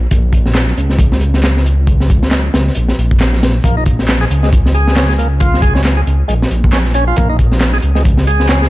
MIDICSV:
0, 0, Header, 1, 4, 480
1, 0, Start_track
1, 0, Tempo, 441176
1, 122, Time_signature, 4, 2, 24, 8
1, 9455, End_track
2, 0, Start_track
2, 0, Title_t, "Tonewheel organ"
2, 0, Program_c, 0, 16
2, 3964, Note_on_c, 0, 58, 77
2, 4087, Note_off_c, 0, 58, 0
2, 4103, Note_on_c, 0, 63, 75
2, 4177, Note_off_c, 0, 63, 0
2, 4582, Note_on_c, 0, 68, 73
2, 4626, Note_off_c, 0, 68, 0
2, 4820, Note_on_c, 0, 56, 77
2, 4896, Note_off_c, 0, 56, 0
2, 5162, Note_on_c, 0, 68, 73
2, 5392, Note_off_c, 0, 68, 0
2, 5401, Note_on_c, 0, 61, 78
2, 5532, Note_off_c, 0, 61, 0
2, 5538, Note_on_c, 0, 68, 75
2, 5584, Note_off_c, 0, 68, 0
2, 5639, Note_on_c, 0, 58, 75
2, 5743, Note_off_c, 0, 58, 0
2, 5876, Note_on_c, 0, 65, 80
2, 6108, Note_off_c, 0, 65, 0
2, 6112, Note_on_c, 0, 68, 68
2, 6241, Note_off_c, 0, 68, 0
2, 6252, Note_on_c, 0, 61, 71
2, 6332, Note_off_c, 0, 61, 0
2, 6495, Note_on_c, 0, 68, 67
2, 6543, Note_off_c, 0, 68, 0
2, 6833, Note_on_c, 0, 56, 95
2, 6899, Note_off_c, 0, 56, 0
2, 7317, Note_on_c, 0, 61, 100
2, 7381, Note_off_c, 0, 61, 0
2, 7559, Note_on_c, 0, 61, 103
2, 7663, Note_off_c, 0, 61, 0
2, 7697, Note_on_c, 0, 65, 95
2, 7790, Note_off_c, 0, 65, 0
2, 7797, Note_on_c, 0, 58, 76
2, 7923, Note_off_c, 0, 58, 0
2, 7935, Note_on_c, 0, 63, 75
2, 8014, Note_off_c, 0, 63, 0
2, 8416, Note_on_c, 0, 68, 73
2, 8464, Note_off_c, 0, 68, 0
2, 8654, Note_on_c, 0, 56, 78
2, 8733, Note_off_c, 0, 56, 0
2, 9001, Note_on_c, 0, 68, 75
2, 9231, Note_off_c, 0, 68, 0
2, 9239, Note_on_c, 0, 61, 82
2, 9371, Note_off_c, 0, 61, 0
2, 9377, Note_on_c, 0, 68, 73
2, 9424, Note_off_c, 0, 68, 0
2, 9455, End_track
3, 0, Start_track
3, 0, Title_t, "Detuned saw bass"
3, 0, Program_c, 1, 39
3, 124, Note_on_c, 1, 34, 94
3, 793, Note_off_c, 1, 34, 0
3, 841, Note_on_c, 1, 37, 90
3, 2711, Note_off_c, 1, 37, 0
3, 2760, Note_on_c, 1, 37, 86
3, 2938, Note_off_c, 1, 37, 0
3, 3005, Note_on_c, 1, 34, 73
3, 3181, Note_off_c, 1, 34, 0
3, 3245, Note_on_c, 1, 34, 84
3, 3913, Note_off_c, 1, 34, 0
3, 3958, Note_on_c, 1, 34, 99
3, 4630, Note_off_c, 1, 34, 0
3, 4682, Note_on_c, 1, 37, 92
3, 6552, Note_off_c, 1, 37, 0
3, 6599, Note_on_c, 1, 37, 86
3, 6777, Note_off_c, 1, 37, 0
3, 6838, Note_on_c, 1, 34, 81
3, 7017, Note_off_c, 1, 34, 0
3, 7082, Note_on_c, 1, 34, 88
3, 7752, Note_off_c, 1, 34, 0
3, 7810, Note_on_c, 1, 34, 93
3, 8476, Note_off_c, 1, 34, 0
3, 8519, Note_on_c, 1, 37, 89
3, 9455, Note_off_c, 1, 37, 0
3, 9455, End_track
4, 0, Start_track
4, 0, Title_t, "Drums"
4, 119, Note_on_c, 9, 42, 89
4, 123, Note_on_c, 9, 36, 104
4, 228, Note_off_c, 9, 42, 0
4, 231, Note_off_c, 9, 36, 0
4, 355, Note_on_c, 9, 36, 92
4, 360, Note_on_c, 9, 42, 75
4, 464, Note_off_c, 9, 36, 0
4, 469, Note_off_c, 9, 42, 0
4, 496, Note_on_c, 9, 38, 42
4, 596, Note_off_c, 9, 38, 0
4, 596, Note_on_c, 9, 38, 114
4, 599, Note_on_c, 9, 39, 105
4, 599, Note_on_c, 9, 42, 86
4, 705, Note_off_c, 9, 38, 0
4, 707, Note_off_c, 9, 39, 0
4, 708, Note_off_c, 9, 42, 0
4, 737, Note_on_c, 9, 38, 32
4, 843, Note_on_c, 9, 42, 69
4, 845, Note_off_c, 9, 38, 0
4, 952, Note_off_c, 9, 42, 0
4, 975, Note_on_c, 9, 38, 38
4, 1073, Note_on_c, 9, 36, 113
4, 1080, Note_on_c, 9, 42, 87
4, 1084, Note_off_c, 9, 38, 0
4, 1182, Note_off_c, 9, 36, 0
4, 1188, Note_off_c, 9, 42, 0
4, 1218, Note_on_c, 9, 38, 46
4, 1315, Note_on_c, 9, 42, 64
4, 1327, Note_off_c, 9, 38, 0
4, 1424, Note_off_c, 9, 42, 0
4, 1457, Note_on_c, 9, 38, 46
4, 1559, Note_on_c, 9, 39, 96
4, 1562, Note_off_c, 9, 38, 0
4, 1562, Note_on_c, 9, 38, 104
4, 1564, Note_on_c, 9, 42, 73
4, 1667, Note_off_c, 9, 39, 0
4, 1671, Note_off_c, 9, 38, 0
4, 1672, Note_off_c, 9, 42, 0
4, 1708, Note_on_c, 9, 38, 45
4, 1803, Note_on_c, 9, 42, 68
4, 1816, Note_off_c, 9, 38, 0
4, 1912, Note_off_c, 9, 42, 0
4, 2037, Note_on_c, 9, 36, 108
4, 2037, Note_on_c, 9, 42, 81
4, 2146, Note_off_c, 9, 36, 0
4, 2146, Note_off_c, 9, 42, 0
4, 2180, Note_on_c, 9, 38, 46
4, 2280, Note_on_c, 9, 42, 69
4, 2285, Note_on_c, 9, 36, 93
4, 2289, Note_off_c, 9, 38, 0
4, 2389, Note_off_c, 9, 42, 0
4, 2393, Note_off_c, 9, 36, 0
4, 2423, Note_on_c, 9, 38, 54
4, 2516, Note_off_c, 9, 38, 0
4, 2516, Note_on_c, 9, 38, 103
4, 2516, Note_on_c, 9, 39, 104
4, 2520, Note_on_c, 9, 42, 77
4, 2625, Note_off_c, 9, 38, 0
4, 2625, Note_off_c, 9, 39, 0
4, 2629, Note_off_c, 9, 42, 0
4, 2762, Note_on_c, 9, 38, 106
4, 2762, Note_on_c, 9, 42, 84
4, 2871, Note_off_c, 9, 38, 0
4, 2871, Note_off_c, 9, 42, 0
4, 2907, Note_on_c, 9, 38, 31
4, 2991, Note_on_c, 9, 42, 81
4, 3016, Note_off_c, 9, 38, 0
4, 3099, Note_off_c, 9, 42, 0
4, 3139, Note_on_c, 9, 38, 47
4, 3248, Note_off_c, 9, 38, 0
4, 3251, Note_on_c, 9, 42, 70
4, 3360, Note_off_c, 9, 42, 0
4, 3386, Note_on_c, 9, 36, 86
4, 3481, Note_on_c, 9, 39, 106
4, 3488, Note_on_c, 9, 42, 78
4, 3489, Note_on_c, 9, 38, 118
4, 3495, Note_off_c, 9, 36, 0
4, 3590, Note_off_c, 9, 39, 0
4, 3597, Note_off_c, 9, 38, 0
4, 3597, Note_off_c, 9, 42, 0
4, 3623, Note_on_c, 9, 38, 42
4, 3730, Note_off_c, 9, 38, 0
4, 3730, Note_on_c, 9, 38, 103
4, 3730, Note_on_c, 9, 42, 84
4, 3838, Note_off_c, 9, 42, 0
4, 3839, Note_off_c, 9, 38, 0
4, 3959, Note_on_c, 9, 36, 108
4, 3968, Note_on_c, 9, 42, 92
4, 4068, Note_off_c, 9, 36, 0
4, 4077, Note_off_c, 9, 42, 0
4, 4196, Note_on_c, 9, 42, 62
4, 4203, Note_on_c, 9, 36, 93
4, 4304, Note_off_c, 9, 42, 0
4, 4312, Note_off_c, 9, 36, 0
4, 4342, Note_on_c, 9, 38, 42
4, 4441, Note_on_c, 9, 39, 106
4, 4446, Note_on_c, 9, 42, 81
4, 4447, Note_off_c, 9, 38, 0
4, 4447, Note_on_c, 9, 38, 114
4, 4550, Note_off_c, 9, 39, 0
4, 4555, Note_off_c, 9, 42, 0
4, 4556, Note_off_c, 9, 38, 0
4, 4581, Note_on_c, 9, 38, 31
4, 4688, Note_on_c, 9, 42, 73
4, 4690, Note_off_c, 9, 38, 0
4, 4797, Note_off_c, 9, 42, 0
4, 4820, Note_on_c, 9, 38, 34
4, 4925, Note_on_c, 9, 36, 104
4, 4928, Note_off_c, 9, 38, 0
4, 4930, Note_on_c, 9, 42, 81
4, 5034, Note_off_c, 9, 36, 0
4, 5039, Note_off_c, 9, 42, 0
4, 5067, Note_on_c, 9, 38, 45
4, 5163, Note_on_c, 9, 42, 59
4, 5176, Note_off_c, 9, 38, 0
4, 5272, Note_off_c, 9, 42, 0
4, 5303, Note_on_c, 9, 38, 47
4, 5395, Note_on_c, 9, 42, 80
4, 5401, Note_on_c, 9, 39, 101
4, 5402, Note_off_c, 9, 38, 0
4, 5402, Note_on_c, 9, 38, 123
4, 5504, Note_off_c, 9, 42, 0
4, 5510, Note_off_c, 9, 39, 0
4, 5511, Note_off_c, 9, 38, 0
4, 5537, Note_on_c, 9, 38, 44
4, 5646, Note_off_c, 9, 38, 0
4, 5646, Note_on_c, 9, 42, 66
4, 5754, Note_off_c, 9, 42, 0
4, 5878, Note_on_c, 9, 42, 96
4, 5885, Note_on_c, 9, 36, 123
4, 5987, Note_off_c, 9, 42, 0
4, 5994, Note_off_c, 9, 36, 0
4, 6027, Note_on_c, 9, 38, 46
4, 6118, Note_on_c, 9, 36, 94
4, 6122, Note_on_c, 9, 42, 70
4, 6136, Note_off_c, 9, 38, 0
4, 6226, Note_off_c, 9, 36, 0
4, 6230, Note_off_c, 9, 42, 0
4, 6261, Note_on_c, 9, 38, 56
4, 6356, Note_on_c, 9, 39, 114
4, 6365, Note_on_c, 9, 42, 83
4, 6367, Note_off_c, 9, 38, 0
4, 6367, Note_on_c, 9, 38, 116
4, 6465, Note_off_c, 9, 39, 0
4, 6474, Note_off_c, 9, 42, 0
4, 6476, Note_off_c, 9, 38, 0
4, 6606, Note_on_c, 9, 42, 66
4, 6714, Note_off_c, 9, 42, 0
4, 6840, Note_on_c, 9, 42, 84
4, 6949, Note_off_c, 9, 42, 0
4, 6989, Note_on_c, 9, 38, 53
4, 7082, Note_on_c, 9, 42, 68
4, 7098, Note_off_c, 9, 38, 0
4, 7190, Note_off_c, 9, 42, 0
4, 7225, Note_on_c, 9, 36, 100
4, 7317, Note_on_c, 9, 39, 112
4, 7321, Note_on_c, 9, 42, 90
4, 7325, Note_on_c, 9, 38, 115
4, 7334, Note_off_c, 9, 36, 0
4, 7425, Note_off_c, 9, 39, 0
4, 7430, Note_off_c, 9, 42, 0
4, 7433, Note_off_c, 9, 38, 0
4, 7455, Note_on_c, 9, 38, 37
4, 7552, Note_on_c, 9, 42, 70
4, 7564, Note_off_c, 9, 38, 0
4, 7661, Note_off_c, 9, 42, 0
4, 7793, Note_on_c, 9, 42, 77
4, 7810, Note_on_c, 9, 36, 117
4, 7902, Note_off_c, 9, 42, 0
4, 7919, Note_off_c, 9, 36, 0
4, 8039, Note_on_c, 9, 36, 84
4, 8042, Note_on_c, 9, 42, 64
4, 8148, Note_off_c, 9, 36, 0
4, 8150, Note_off_c, 9, 42, 0
4, 8179, Note_on_c, 9, 38, 44
4, 8275, Note_off_c, 9, 38, 0
4, 8275, Note_on_c, 9, 38, 113
4, 8277, Note_on_c, 9, 39, 118
4, 8277, Note_on_c, 9, 42, 75
4, 8384, Note_off_c, 9, 38, 0
4, 8385, Note_off_c, 9, 42, 0
4, 8386, Note_off_c, 9, 39, 0
4, 8411, Note_on_c, 9, 38, 35
4, 8512, Note_on_c, 9, 42, 61
4, 8519, Note_off_c, 9, 38, 0
4, 8621, Note_off_c, 9, 42, 0
4, 8653, Note_on_c, 9, 38, 37
4, 8762, Note_off_c, 9, 38, 0
4, 8762, Note_on_c, 9, 36, 111
4, 8766, Note_on_c, 9, 42, 86
4, 8871, Note_off_c, 9, 36, 0
4, 8874, Note_off_c, 9, 42, 0
4, 8894, Note_on_c, 9, 38, 48
4, 8999, Note_on_c, 9, 42, 72
4, 9003, Note_off_c, 9, 38, 0
4, 9108, Note_off_c, 9, 42, 0
4, 9137, Note_on_c, 9, 38, 45
4, 9237, Note_off_c, 9, 38, 0
4, 9237, Note_on_c, 9, 38, 109
4, 9237, Note_on_c, 9, 39, 117
4, 9241, Note_on_c, 9, 42, 79
4, 9346, Note_off_c, 9, 38, 0
4, 9346, Note_off_c, 9, 39, 0
4, 9350, Note_off_c, 9, 42, 0
4, 9378, Note_on_c, 9, 38, 49
4, 9455, Note_off_c, 9, 38, 0
4, 9455, End_track
0, 0, End_of_file